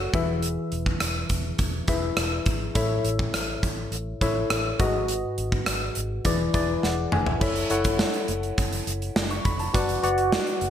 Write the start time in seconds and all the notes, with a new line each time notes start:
Already playing: F#4 A4 C#5 F#5
0.13 E1 E3 E4 G#4 B4 E5, kick, closed hi-hat
0.43 closed hi-hat
0.72 E1, closed hi-hat
0.86 kick
1.00 E1, cross-stick, closed hi-hat
1.29 E1, kick, closed hi-hat
1.58 E1, kick, closed hi-hat
1.88 E1 E4 G#4 B4 E5, kick, closed hi-hat
2.17 E1, cross-stick, closed hi-hat
2.46 G#1, kick, closed hi-hat
2.75 A1 A2 E4 A4 C#5 E5, kick, closed hi-hat
3.04 A1, closed hi-hat
3.19 kick
3.34 A1, cross-stick, closed hi-hat
3.63 A1, kick, closed hi-hat
3.92 A1, closed hi-hat
4.21 A1 E4 A4 C#5 E5, kick, closed hi-hat
4.50 A1, cross-stick, closed hi-hat
4.79 G#1 G#2 F#4 G#4 B4 D#5, kick, closed hi-hat
5.08 closed hi-hat
5.38 G#1, closed hi-hat
5.52 kick
5.66 G#1, cross-stick, closed hi-hat
5.95 G#1, closed hi-hat
6.25 E1 E3 E4 G#4 B4 D5, kick, closed hi-hat
6.54 E1 E4 G#4 B4 D5, kick, closed hi-hat
6.83 E1 F#5, snare
7.12 F1 G#5, mid tom
7.26 E5, floor tom
7.40 F#1 E4 A4 C#5 E5, kick, crash
7.56 closed hi-hat
7.70 F#1 E4 A4 C#5 F#5, closed hi-hat
7.84 kick, closed hi-hat
7.99 snare
8.14 closed hi-hat
8.28 F#1, closed hi-hat
8.43 closed hi-hat
8.58 F#1, kick, closed hi-hat
8.73 closed hi-hat
8.87 F#1, closed hi-hat
9.02 closed hi-hat
9.16 F#1, snare
9.30 C#6, closed hi-hat
9.45 F1 B5, kick, closed hi-hat
9.59 A5, closed hi-hat
9.74 F#1 F#4 B4 D5 F#5, kick, closed hi-hat
9.89 closed hi-hat
10.03 F#1 F#4 B4 D5 F#5, closed hi-hat
10.18 closed hi-hat
10.32 snare
10.47 closed hi-hat
10.61 F#1, closed hi-hat